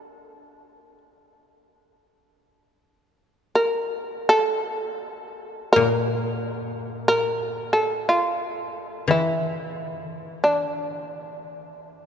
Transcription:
0.00 0.98 D4 medium
3.55 4.26 A#4 medium
4.29 5.71 A4 medium
5.73 8.50 A#2 medium
5.73 7.04 A#4 medium
7.08 7.69 A#4 medium
7.73 8.06 A4 medium
8.09 9.05 F4 medium
9.08 11.92 E3 soft
9.08 10.37 E4 medium
10.44 12.06 D4 medium

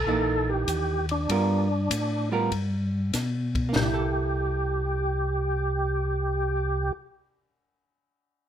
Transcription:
0.00 0.51 A4 loud
0.05 0.65 A#1 medium
0.05 1.01 E3 medium
0.05 1.01 A#3 medium
0.05 1.02 D#4 medium
0.49 1.06 G4 medium
0.68 1.27 D#2 medium
0.68 kick soft
0.68 hi-hat pedal medium
0.68 ride medium
1.09 2.29 D4 medium
1.09 ride soft
1.29 1.89 G2 medium
1.29 1.66 G3 medium
1.29 1.67 B3 medium
1.29 1.67 F4 medium
1.29 1.67 A#4 medium
1.29 kick soft
1.29 ride medium
1.90 2.50 A2 medium
1.90 kick soft
1.90 hi-hat pedal medium
1.90 ride medium
2.31 2.50 G3 medium
2.31 2.50 B3 medium
2.31 2.51 F4 medium
2.31 2.51 A#4 medium
2.51 3.12 G2 medium
2.51 kick soft
2.51 ride medium
3.13 3.74 B2 medium
3.13 kick soft
3.13 snare soft
3.13 hi-hat pedal medium
3.13 ride medium
3.55 kick medium
3.55 ride soft
3.69 6.89 A#3 medium
3.75 6.91 C2 medium
3.75 6.93 G4 medium
3.75 snare loud
3.75 floor tom medium
3.83 7.03 E4 medium
3.94 7.14 A4 medium

